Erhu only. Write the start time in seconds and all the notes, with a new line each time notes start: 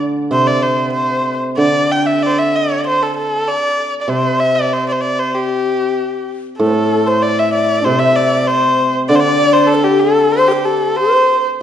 0.32 C5
0.47 D5
0.62 C5
0.93 C5
1.58 D5
1.91 G5
2.06 E5
2.23 C5 D5
2.30 D5
2.39 E5
2.56 D5
2.87 C5
3.02 A4
3.17 A4
3.48 D5
4.01 D5
4.09 C5
4.40 E5
4.55 D5
4.73 C5
4.88 C5 D5
5.01 D5
5.19 C5
5.34 G4
6.59 A4
7.06 C5
7.22 D5
7.39 E5
7.54 D5
7.84 C5
7.99 E5
8.15 D5
8.47 C5
9.09 D5
9.15 C5
9.20 D5
9.53 C5
9.67 A4
9.84 G4
10.00 A4
10.32 C5
10.48 G4
10.65 A4
10.97 C5